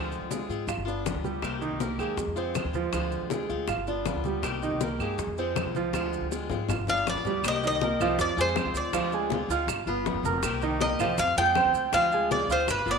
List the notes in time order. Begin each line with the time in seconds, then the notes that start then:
Already playing: D2 D3 F3 G#3 C4 F4
0.12 high bongo, high conga, maracas
0.21 D2
0.30 D3 G#3 C4 F4 G#4, high bongo, high conga, maracas
0.49 G#2 G#3 C4 F4, high conga, maracas
0.67 G1 F4 F5, muted steel-string acoustic guitar stroke, high bongo, high conga, claves, maracas
0.77 G1
0.85 B3 D4 F4 D5, high bongo, high conga, maracas
1.06 B3 F4, high bongo, low bongo, high conga, maracas
1.14 D2
1.24 G3 G4, high bongo, high conga, maracas
1.42 C2 C3 D#3 A#3 C4 G4, high bongo, high conga, claves, maracas
1.61 D#3 D#4, high conga, maracas
1.70 C2
1.79 D#3 A#3 C4 G4 A#4, high bongo, high conga, maracas
1.98 D#2 D#3 G#3 A#3 C4 G4 G#4, claves, maracas
2.17 F2, muted steel-string acoustic guitar stroke, high bongo, high conga, maracas
2.27 F2
2.36 F3 G#3 C4 F4 C5, high conga, maracas
2.55 F3 G#3 C4 F4, high bongo, low bongo, high conga, claves, maracas
2.64 D#2
2.74 F3 F4, high conga, maracas
2.93 D2 D3 F3 G#3 C4 F4, high bongo, high conga, claves, maracas
3.12 high bongo, high conga, maracas
3.21 D2
3.30 D3 G#3 C4 F4 G#4, high bongo, high conga, maracas
3.49 D2 G#3 C4 F4, high conga, maracas
3.68 G1 F4 F5, muted steel-string acoustic guitar stroke, high bongo, high conga, claves, maracas
3.77 G1
3.87 B3 D4 F4 D5, high bongo, high conga, maracas
4.06 G3 B3 F4, high bongo, low bongo, high conga, maracas
4.14 D2
4.24 G3 G4, high bongo, high conga, maracas
4.42 C2 C3 D#3 A#3 C4 G4, high bongo, high conga, claves, maracas
4.62 D#3 D#4, high conga, maracas
4.71 C2
4.81 D#3 A#3 C4 G4 A#4, high bongo, high conga, maracas
4.99 G2 D#3 G#3 A#3 C4 G4 G#4, claves, maracas
5.18 F2, muted steel-string acoustic guitar stroke, high bongo, high conga, maracas
5.27 F2
5.37 F3 G#3 C4 F4 C5, high conga, maracas
5.56 F3 G#3 C4 F4, high bongo, low bongo, high conga, claves, maracas
5.65 C2
5.75 F3 F4, high conga, maracas
5.93 D2 D3 F3 G#3 C4 F4, high bongo, high conga, claves, maracas
6.13 high bongo, maracas
6.21 D2
6.31 D3 G#3 C4 F4 G#4, high bongo, maracas
6.50 G#2 G#3 C4 F4, low conga, maracas
6.68 G1 F4 F5, muted steel-string acoustic guitar stroke, high bongo, low conga, claves, maracas
6.78 G1
6.87 B3 D4 F4 D5 F5, high bongo, low conga, maracas
7.07 G3 B3 F4 D5, high bongo, low bongo, maracas
7.15 D2
7.25 G3 G4, high bongo, low conga, maracas
7.43 C2 C3 D#3 A#3 C4 G4, high bongo, high conga, claves, maracas
7.48 D#5
7.63 D#3 D#4 D#5, high conga, maracas
7.67 D#5
7.81 D#3 A#3 C4 G4 A#4 A#5, high bongo, high conga, maracas
8.00 C2 D#3 F3 A#3 C4 F4 G4 F5, high conga, low conga, claves, maracas
8.18 F2 D5, muted steel-string acoustic guitar stroke, high bongo, high conga, maracas
8.37 F2 F3 G#3 C4 F4 G#4 C5 G#5, high conga, maracas
8.55 F3 G#3 C4 F4 C5 C6, high bongo, low bongo, high conga, claves, maracas
8.65 D2
8.74 D2 D5, high conga, maracas
8.93 D2 D3 F3 G#3 C4 F4 F5, high bongo, high conga, claves, maracas
9.12 G#3 G#4 G#5, high bongo, high conga, maracas
9.30 D3 G#3 C4 F4, high bongo, high conga, maracas
9.48 D2 G#3 C4 F4 F5 F6, high conga, maracas
9.67 G1, muted steel-string acoustic guitar stroke, high bongo, high conga, claves, maracas
9.86 G1 B3 F4 B4 B5, high bongo, high conga, maracas
10.06 G3 B3 F4, high bongo, low bongo, high conga, maracas
10.14 F1
10.23 F1 A#4 A#5, high bongo, high conga, maracas
10.42 C2 C3 D#3 A#3 C4 G4, high bongo, high conga, claves, maracas
10.62 D#3 D#4 D#5, high conga, maracas
10.81 D#3 A#3 C4 G4 A#4 D#5 A#5, high bongo, high conga, maracas
10.99 C2 D#3 F3 A#3 C4 F4 G4 F5, high conga, low conga, claves, maracas
11.18 F2 F5, muted steel-string acoustic guitar stroke, high bongo, high conga, maracas
11.37 F2 F3 G#3 C4 F4 G#4 G5 G#5, high conga, maracas
11.55 F3 G#3 C4 F4 C5 C6, high bongo, low bongo, high conga, claves, maracas
11.65 D2
11.73 D2, high conga, maracas
11.92 D2 D3 F3 G#3 C4 F4 F5, high bongo, high conga, claves, maracas
12.12 G#3 G#4 G#5, high bongo, high conga, maracas
12.30 D3 G#3 C4 F4 D5, high bongo, high conga, maracas
12.48 D2 G#3 C4 F4 F5 F6, high conga, maracas
12.52 C5
12.67 G1 B4, muted steel-string acoustic guitar stroke, high bongo, high conga, claves, maracas
12.86 G1 B3 F4 B4 B5, high bongo, high conga, maracas
12.91 D5